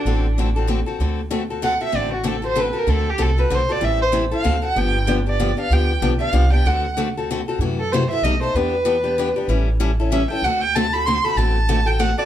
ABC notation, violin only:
X:1
M:3/4
L:1/8
Q:"Swing" 1/4=191
K:Dmix
V:1 name="Violin"
D4 z2 | z4 f e | d F A c B _B | A G A B c d |
e c z =f2 ^f | g2 z d2 =f | g2 z =f2 g | f2 z4 |
z A c e ^d c | B6 | z4 e g | f g a b c' b |
a3 g f d |]